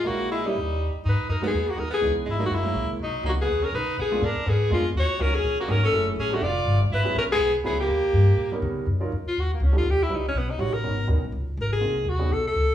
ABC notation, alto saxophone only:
X:1
M:4/4
L:1/16
Q:"Swing" 1/4=245
K:Bbphr
V:1 name="Alto saxophone"
G4 _F2 E8 z2 | [K:G#m] B4 A2 G4 F2 A2 G2- | G2 z2 E2 F2 E6 z2 | D4 F2 G4 A2 B4 |
G4 A4 G4 ^E3 z | c4 A2 G4 F2 A2 =A2- | =A2 z2 G2 F2 =d6 z2 | B4 A2 G4 z2 G2 =G2- |
=G12 z4 | [K:Ebm] z6 F2 G2 B,2 D2 F2 | =G2 _F2 E2 D2 =B,2 E2 ^F2 _B2- | B4 z8 B2 A2- |
A4 G4 =A2 A6 |]